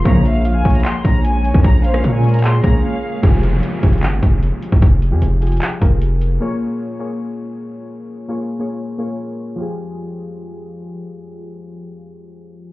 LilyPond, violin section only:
\new Staff \with { instrumentName = "Violin section" } { \time 4/4 \key f \minor \tempo 4 = 151 bes''8 f''8. aes''8 bes''16 c'''8 bes''8 aes''4 | bes''8 f''8. aes''8 bes''16 c'''8 bes''8 f''4 | r1 | r1 |
r1 | r1 | r1 | r1 | }